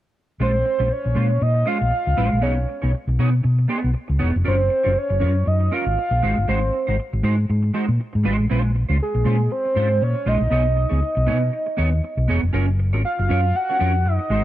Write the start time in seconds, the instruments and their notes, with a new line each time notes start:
0.40 fingered electric bass A#1, clean electric guitar G#3 C#4 F4 C5, soft synth lead C5
0.54 muted clean electric guitar stroke
0.65 muted clean electric guitar stroke
0.79 fingered electric bass A#1, clean electric guitar G#3 C#4 F4 C5
0.90 soft synth lead C#5, muted clean electric guitar stroke
1.04 fingered electric bass A#1, muted clean electric guitar stroke
1.15 fingered electric bass A#2, clean electric guitar G#3 C#4 F4 C5
1.30 muted clean electric guitar stroke
1.41 fingered electric bass A#2, soft synth lead D#5, muted clean electric guitar stroke
1.54 muted clean electric guitar stroke
1.65 clean electric guitar G#3 C#4 F4 C5, soft synth lead F5
1.80 fingered electric bass A#1, muted clean electric guitar stroke
1.90 muted clean electric guitar stroke
2.06 fingered electric bass C#2, muted clean electric guitar stroke
2.17 fingered electric bass A1, clean electric guitar G#3 C#4 F4 C5
2.31 fingered electric bass A#1, muted clean electric guitar stroke
2.41 fingered electric bass B1, clean electric guitar B3 D#4 G#4 C#5, soft synth lead C#5
2.57 muted clean electric guitar stroke
2.68 muted clean electric guitar stroke
2.82 fingered electric bass B1, clean electric guitar B3 D#4 G#4 C#5
2.94 muted clean electric guitar stroke
3.07 fingered electric bass B1, muted clean electric guitar stroke
3.19 fingered electric bass B2, clean electric guitar B3 D#4 G#4 C#5
3.32 muted clean electric guitar stroke
3.43 fingered electric bass B2, muted clean electric guitar stroke
3.59 muted clean electric guitar stroke
3.68 clean electric guitar B3 D#4 G#4 C#5
3.82 fingered electric bass B1, muted clean electric guitar stroke
3.94 muted clean electric guitar stroke
4.08 fingered electric bass C#2, muted clean electric guitar stroke
4.19 fingered electric bass E1, clean electric guitar B3 D#4 G#4 C#5
4.33 fingered electric bass F1, muted clean electric guitar stroke
4.44 fingered electric bass F#1, clean electric guitar C#4 F4 A#4 C#5, soft synth lead C5
4.58 muted clean electric guitar stroke
4.69 muted clean electric guitar stroke
4.83 fingered electric bass F#1, clean electric guitar C#4 F4 A#4 C#5
4.96 soft synth lead C#5, muted clean electric guitar stroke
5.10 fingered electric bass F#1, muted clean electric guitar stroke
5.20 fingered electric bass F#2, clean electric guitar C#4 F4 A#4 C#5
5.34 muted clean electric guitar stroke
5.45 fingered electric bass F#2, soft synth lead D#5, muted clean electric guitar stroke
5.60 muted clean electric guitar stroke
5.71 clean electric guitar C#4 F4 A#4 C#5, soft synth lead F5
5.86 fingered electric bass G#1, muted clean electric guitar stroke
5.98 muted clean electric guitar stroke
6.11 fingered electric bass A#1, muted clean electric guitar stroke
6.22 fingered electric bass G#1, clean electric guitar G#3 D#4 F#4 C5
6.37 fingered electric bass G1, muted clean electric guitar stroke
6.48 fingered electric bass G#1, clean electric guitar G#3 D#4 F#4 C5, soft synth lead C5
6.61 muted clean electric guitar stroke
6.73 muted clean electric guitar stroke
6.87 fingered electric bass G#1, clean electric guitar G#3 D#4 F#4 C5
6.99 muted clean electric guitar stroke
7.13 fingered electric bass G#1, muted clean electric guitar stroke
7.23 fingered electric bass G#2, clean electric guitar G#3 D#4 F#4 C5
7.38 muted clean electric guitar stroke
7.49 fingered electric bass G#2, muted clean electric guitar stroke
7.63 muted clean electric guitar stroke
7.74 clean electric guitar G#3 D#4 F#4 C5
7.88 fingered electric bass A#2, muted clean electric guitar stroke
7.99 muted clean electric guitar stroke
8.13 fingered electric bass G#2, muted clean electric guitar stroke
8.23 fingered electric bass G#1, clean electric guitar G#3 D#4 F#4 C5
8.39 fingered electric bass A1, muted clean electric guitar stroke
8.50 fingered electric bass A#1, clean electric guitar G#3 C#4 F4 C5
8.64 muted clean electric guitar stroke
8.75 muted clean electric guitar stroke
8.89 fingered electric bass C#2, clean electric guitar G#3 C#4 F4 C5
8.99 soft synth lead G#4, muted clean electric guitar stroke
9.14 fingered electric bass A#1, muted clean electric guitar stroke
9.24 fingered electric bass A#2, clean electric guitar G#3 C#4 F4 C5
9.39 muted clean electric guitar stroke
9.50 soft synth lead C5, muted clean electric guitar stroke
9.65 muted clean electric guitar stroke
9.75 fingered electric bass G#2, clean electric guitar G#3 C#4 F4 C5
9.91 muted clean electric guitar stroke
10.01 fingered electric bass A#2, soft synth lead C#5, muted clean electric guitar stroke
10.15 muted clean electric guitar stroke
10.26 fingered electric bass A#1, clean electric guitar G#3 C#4 F4 C5, soft synth lead D#5
10.40 fingered electric bass A#1, muted clean electric guitar stroke
10.50 fingered electric bass B1, clean electric guitar B3 D#4 G#4 C#5
10.65 muted clean electric guitar stroke
10.76 muted clean electric guitar stroke
10.89 fingered electric bass C#2, clean electric guitar B3 D#4 G#4 C#5
11.15 fingered electric bass B1, muted clean electric guitar stroke
11.26 fingered electric bass B2, clean electric guitar B3 D#4 G#4 C#5
11.40 muted clean electric guitar stroke
11.53 muted clean electric guitar stroke
11.66 muted clean electric guitar stroke
11.77 fingered electric bass D#2, clean electric guitar B3 D#4 G#4 C#5
11.92 muted clean electric guitar stroke
12.04 muted clean electric guitar stroke
12.17 fingered electric bass B1, muted clean electric guitar stroke
12.28 fingered electric bass E1, clean electric guitar B3 D#4 G#4 C#5
12.43 fingered electric bass F1, muted clean electric guitar stroke
12.53 fingered electric bass F#1, clean electric guitar C#4 F4 A#4 C#5
12.68 muted clean electric guitar stroke
12.79 muted clean electric guitar stroke
12.93 fingered electric bass G#1, clean electric guitar C#4 F4 A#4 C#5
13.05 soft synth lead F5, muted clean electric guitar stroke
13.19 fingered electric bass F#1, muted clean electric guitar stroke
13.29 fingered electric bass F#2, clean electric guitar C#4 F4 A#4 C#5
13.43 muted clean electric guitar stroke
13.55 soft synth lead F#5, muted clean electric guitar stroke
13.69 clean electric guitar C#4 F4 A#4 C#5
13.79 fingered electric bass F2, clean electric guitar C#4 F4 A#4 C#5
13.95 muted clean electric guitar stroke
14.06 fingered electric bass F#2, soft synth lead D#5, muted clean electric guitar stroke
14.19 muted clean electric guitar stroke
14.30 fingered electric bass G#1, clean electric guitar G#3 D#4 F#4 C5